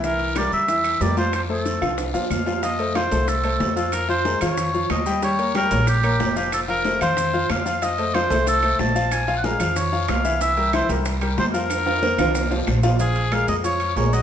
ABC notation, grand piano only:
X:1
M:4/4
L:1/8
Q:1/4=185
K:Bbm
V:1 name="Grand piano"
[=E,=E=e]2 [=G,=GB]2 [E,Ee]2 [G,GB] [F,Ff]- | [F,Ff] [=A,=Ac]2 [F,Ff]2 [F,Ff]2 [F,Ff] | [F,Ff] [=A,=Ac] [F,Ff] [A,Ac]2 [A,Ac]2 [F,Ff]- | [F,Ff] [F,Ff] [A,AB] [F,Ff]2 [F,Ff]2 [=G,=G=g] |
[=G,=G=g] [B,Bd] [G,Gg] [B,Bd]2 [B,Bd]2 [F,Ff]- | [F,Ff] [F,Ff] [=A,=Ac] [F,Ff]2 [F,Ff]2 [F,Ff] | [F,Ff] [=A,=Ac] [F,Ff] [A,Ac]2 [A,Ac]2 [F,Ff]- | [F,Ff] [F,Ff] [A,AB] [F,Ff]2 [F,Ff]2 [=E,=E=e] |
[=E,=E=e] [=G,=GB] [E,Ee] [G,GB]2 [G,GB]2 [F,Ff]- | [F,Ff] [F,Ff] [B,Bc] [F,Ff]2 [F,Ff]2 [F,Ff] | [F,Ff]2 [A,AB]2 [F,Ff]2 [A,AB] [G,Gg] |]